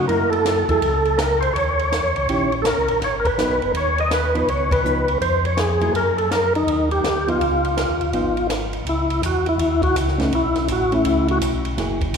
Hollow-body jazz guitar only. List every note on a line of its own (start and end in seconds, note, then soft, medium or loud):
0.09 0.64 F#3 medium
0.09 0.64 A#3 medium
0.09 0.64 E4 medium
0.69 0.81 F#3 medium
0.69 0.81 A#3 medium
0.69 0.81 E4 medium
0.69 0.82 G#4 medium
2.29 2.50 D#3 medium
2.29 2.50 C#4 medium
2.29 2.50 E4 medium
2.29 2.50 G4 medium
3.38 3.59 F#3 medium
3.38 3.59 B3 medium
3.38 3.59 D#4 medium
4.34 4.46 F3 medium
4.34 4.47 B3 medium
4.34 4.47 D#4 medium
4.84 5.05 F3 medium
4.84 5.06 B3 medium
4.84 5.06 D#4 medium
5.81 5.93 F#3 medium
5.81 5.93 A#3 medium
5.81 5.93 E4 medium
5.81 5.93 G#4 medium
7.27 7.39 F3 medium
7.27 7.39 B3 medium
7.27 7.40 D#4 medium
8.13 8.34 F3 medium
8.13 8.35 B3 medium
8.13 8.35 D#4 medium
10.18 10.31 A3 medium
10.18 10.31 C#4 medium
10.18 10.31 D#4 medium
10.92 11.39 A3 medium
10.92 11.39 C#4 medium
11.77 11.99 F#3 medium
11.77 11.99 A#3 soft
11.77 11.99 E4 medium
11.77 11.99 G#4 medium